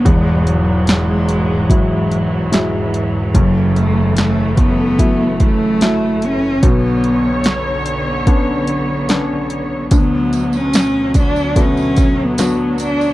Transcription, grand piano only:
\new Staff \with { instrumentName = "Grand piano" } { \time 4/4 \key fis \minor \tempo 4 = 73 <e,, e,>2 <fis gis e'>4 <fis gis e'>4 | <fis,, fis,>2 <fis a e'>4 <fis a e'>4 | <b,, b,>2 <b cis' d'>4 <b cis' d'>4 | <d, d>2 <a b fis'>4 <b d' fis'>4 | }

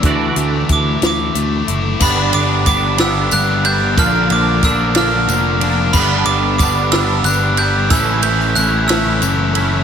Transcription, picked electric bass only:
\new Staff \with { instrumentName = "Picked electric bass" } { \clef bass \time 6/8 \key g \lydian \tempo 4. = 61 d,8 d,8 d,8 d,8 d,8 fis,,8 | g,,8 g,,8 g,,4 g,,4 | bes,,8 bes,,8 bes,,4 f,,4 | g,,8 g,,8 g,,4 g,,4 |
a,,8 a,,8 a,,4 fis,,4 | }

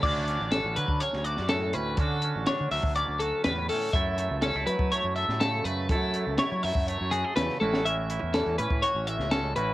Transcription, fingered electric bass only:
\new Staff \with { instrumentName = "Fingered electric bass" } { \clef bass \time 4/4 \key d \lydian \tempo 4 = 123 d,8. a,,8 a,,16 d16 d16 r16 d,8 fis,8. d,8 | d8. a,,16 r16 d16 d,16 d,8 d,8 r16 e,8 r8 | fis,8. cis,8 cis,16 fis16 fis16 r16 fis,8 a,8. fis,8 | fis8. cis,16 r16 fis16 fis,16 fis,8 fis,8 r16 e,16 r16 a,,8~ |
a,,8. e,8 e,16 a,16 a,16 r16 a,,8 cis,8. a,,8 | }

